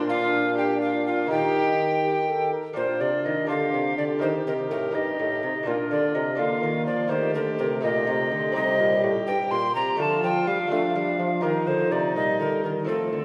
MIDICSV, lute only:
0, 0, Header, 1, 2, 480
1, 0, Start_track
1, 0, Tempo, 485437
1, 1293, Time_signature, 6, 3, 24, 8
1, 5133, Tempo, 481155
1, 13171, End_track
2, 0, Start_track
2, 0, Title_t, "Lute"
2, 0, Program_c, 0, 24
2, 0, Note_on_c, 0, 46, 55
2, 0, Note_on_c, 0, 58, 56
2, 0, Note_on_c, 0, 62, 50
2, 0, Note_on_c, 0, 65, 55
2, 1234, Note_off_c, 0, 58, 0
2, 1240, Note_off_c, 0, 62, 0
2, 1246, Note_off_c, 0, 65, 0
2, 1251, Note_on_c, 0, 58, 46
2, 1253, Note_off_c, 0, 46, 0
2, 1265, Note_on_c, 0, 63, 44
2, 1293, Note_on_c, 0, 51, 47
2, 2458, Note_off_c, 0, 51, 0
2, 2677, Note_off_c, 0, 58, 0
2, 2684, Note_off_c, 0, 63, 0
2, 2702, Note_on_c, 0, 58, 45
2, 2714, Note_on_c, 0, 62, 44
2, 2730, Note_on_c, 0, 65, 41
2, 2740, Note_on_c, 0, 46, 40
2, 2954, Note_off_c, 0, 46, 0
2, 2976, Note_on_c, 0, 48, 45
2, 3191, Note_off_c, 0, 48, 0
2, 3220, Note_on_c, 0, 51, 49
2, 3412, Note_off_c, 0, 58, 0
2, 3421, Note_off_c, 0, 62, 0
2, 3424, Note_on_c, 0, 58, 42
2, 3429, Note_off_c, 0, 65, 0
2, 3432, Note_on_c, 0, 62, 42
2, 3433, Note_off_c, 0, 51, 0
2, 3446, Note_on_c, 0, 65, 42
2, 3456, Note_on_c, 0, 50, 47
2, 3671, Note_off_c, 0, 50, 0
2, 3696, Note_on_c, 0, 48, 47
2, 3910, Note_off_c, 0, 48, 0
2, 3938, Note_on_c, 0, 50, 40
2, 4129, Note_off_c, 0, 58, 0
2, 4137, Note_off_c, 0, 62, 0
2, 4141, Note_on_c, 0, 58, 39
2, 4146, Note_off_c, 0, 65, 0
2, 4151, Note_off_c, 0, 50, 0
2, 4155, Note_on_c, 0, 63, 39
2, 4167, Note_on_c, 0, 67, 40
2, 4181, Note_on_c, 0, 51, 45
2, 4388, Note_off_c, 0, 58, 0
2, 4393, Note_off_c, 0, 51, 0
2, 4419, Note_on_c, 0, 48, 42
2, 4633, Note_off_c, 0, 48, 0
2, 4658, Note_on_c, 0, 45, 48
2, 4856, Note_off_c, 0, 63, 0
2, 4857, Note_on_c, 0, 58, 36
2, 4868, Note_on_c, 0, 63, 38
2, 4869, Note_off_c, 0, 67, 0
2, 4872, Note_off_c, 0, 45, 0
2, 4882, Note_on_c, 0, 67, 40
2, 4892, Note_on_c, 0, 43, 42
2, 5107, Note_off_c, 0, 58, 0
2, 5108, Note_off_c, 0, 43, 0
2, 5136, Note_on_c, 0, 45, 54
2, 5351, Note_off_c, 0, 45, 0
2, 5370, Note_on_c, 0, 48, 42
2, 5571, Note_on_c, 0, 58, 46
2, 5578, Note_off_c, 0, 63, 0
2, 5585, Note_off_c, 0, 67, 0
2, 5587, Note_off_c, 0, 48, 0
2, 5589, Note_on_c, 0, 62, 42
2, 5599, Note_on_c, 0, 65, 44
2, 5612, Note_on_c, 0, 46, 49
2, 5827, Note_off_c, 0, 46, 0
2, 5850, Note_on_c, 0, 50, 46
2, 6066, Note_off_c, 0, 50, 0
2, 6087, Note_on_c, 0, 48, 54
2, 6279, Note_off_c, 0, 58, 0
2, 6291, Note_on_c, 0, 58, 41
2, 6292, Note_off_c, 0, 62, 0
2, 6302, Note_off_c, 0, 65, 0
2, 6304, Note_off_c, 0, 48, 0
2, 6304, Note_on_c, 0, 62, 45
2, 6316, Note_on_c, 0, 65, 40
2, 6330, Note_on_c, 0, 50, 43
2, 6545, Note_off_c, 0, 50, 0
2, 6568, Note_on_c, 0, 51, 49
2, 6784, Note_off_c, 0, 51, 0
2, 6816, Note_on_c, 0, 53, 41
2, 7001, Note_off_c, 0, 58, 0
2, 7009, Note_off_c, 0, 62, 0
2, 7013, Note_on_c, 0, 58, 43
2, 7019, Note_off_c, 0, 65, 0
2, 7023, Note_on_c, 0, 63, 44
2, 7029, Note_off_c, 0, 53, 0
2, 7036, Note_on_c, 0, 67, 46
2, 7048, Note_on_c, 0, 51, 48
2, 7265, Note_off_c, 0, 58, 0
2, 7266, Note_off_c, 0, 51, 0
2, 7291, Note_on_c, 0, 50, 50
2, 7510, Note_off_c, 0, 50, 0
2, 7529, Note_on_c, 0, 48, 54
2, 7740, Note_off_c, 0, 63, 0
2, 7741, Note_on_c, 0, 58, 44
2, 7747, Note_off_c, 0, 67, 0
2, 7749, Note_off_c, 0, 48, 0
2, 7753, Note_on_c, 0, 63, 48
2, 7762, Note_on_c, 0, 67, 44
2, 7777, Note_on_c, 0, 46, 45
2, 7990, Note_off_c, 0, 58, 0
2, 7992, Note_off_c, 0, 46, 0
2, 8006, Note_on_c, 0, 48, 58
2, 8224, Note_off_c, 0, 48, 0
2, 8249, Note_on_c, 0, 50, 46
2, 8454, Note_on_c, 0, 60, 49
2, 8456, Note_off_c, 0, 63, 0
2, 8463, Note_off_c, 0, 67, 0
2, 8465, Note_off_c, 0, 50, 0
2, 8468, Note_on_c, 0, 63, 45
2, 8479, Note_on_c, 0, 67, 49
2, 8493, Note_on_c, 0, 48, 50
2, 8707, Note_off_c, 0, 48, 0
2, 8728, Note_on_c, 0, 46, 53
2, 8944, Note_off_c, 0, 46, 0
2, 8969, Note_on_c, 0, 45, 56
2, 9184, Note_off_c, 0, 45, 0
2, 9209, Note_on_c, 0, 43, 49
2, 9423, Note_off_c, 0, 43, 0
2, 9446, Note_on_c, 0, 46, 59
2, 9662, Note_off_c, 0, 46, 0
2, 9687, Note_on_c, 0, 48, 47
2, 9866, Note_off_c, 0, 60, 0
2, 9873, Note_off_c, 0, 63, 0
2, 9879, Note_off_c, 0, 67, 0
2, 9888, Note_on_c, 0, 57, 49
2, 9902, Note_off_c, 0, 48, 0
2, 9902, Note_on_c, 0, 62, 50
2, 9914, Note_on_c, 0, 65, 48
2, 9927, Note_on_c, 0, 50, 57
2, 10141, Note_off_c, 0, 50, 0
2, 10167, Note_on_c, 0, 53, 53
2, 10369, Note_off_c, 0, 57, 0
2, 10380, Note_off_c, 0, 53, 0
2, 10402, Note_on_c, 0, 55, 55
2, 10599, Note_off_c, 0, 55, 0
2, 10602, Note_on_c, 0, 57, 41
2, 10604, Note_off_c, 0, 62, 0
2, 10614, Note_off_c, 0, 65, 0
2, 10616, Note_on_c, 0, 62, 41
2, 10631, Note_on_c, 0, 65, 41
2, 10632, Note_off_c, 0, 57, 0
2, 10643, Note_on_c, 0, 57, 53
2, 10858, Note_off_c, 0, 57, 0
2, 10882, Note_on_c, 0, 55, 54
2, 11097, Note_off_c, 0, 55, 0
2, 11121, Note_on_c, 0, 53, 47
2, 11325, Note_off_c, 0, 62, 0
2, 11330, Note_off_c, 0, 65, 0
2, 11334, Note_on_c, 0, 63, 48
2, 11336, Note_off_c, 0, 53, 0
2, 11346, Note_on_c, 0, 67, 41
2, 11358, Note_on_c, 0, 51, 56
2, 11575, Note_off_c, 0, 51, 0
2, 11601, Note_on_c, 0, 50, 43
2, 11818, Note_off_c, 0, 50, 0
2, 11844, Note_on_c, 0, 48, 53
2, 12060, Note_off_c, 0, 48, 0
2, 12088, Note_on_c, 0, 46, 44
2, 12303, Note_off_c, 0, 46, 0
2, 12322, Note_on_c, 0, 50, 50
2, 12541, Note_off_c, 0, 50, 0
2, 12562, Note_on_c, 0, 51, 42
2, 12757, Note_off_c, 0, 63, 0
2, 12763, Note_off_c, 0, 67, 0
2, 12768, Note_on_c, 0, 57, 40
2, 12783, Note_off_c, 0, 51, 0
2, 12783, Note_on_c, 0, 60, 38
2, 12794, Note_on_c, 0, 65, 41
2, 12805, Note_on_c, 0, 53, 42
2, 13025, Note_off_c, 0, 57, 0
2, 13026, Note_off_c, 0, 53, 0
2, 13032, Note_off_c, 0, 60, 0
2, 13050, Note_on_c, 0, 50, 43
2, 13171, Note_off_c, 0, 50, 0
2, 13171, Note_off_c, 0, 65, 0
2, 13171, End_track
0, 0, End_of_file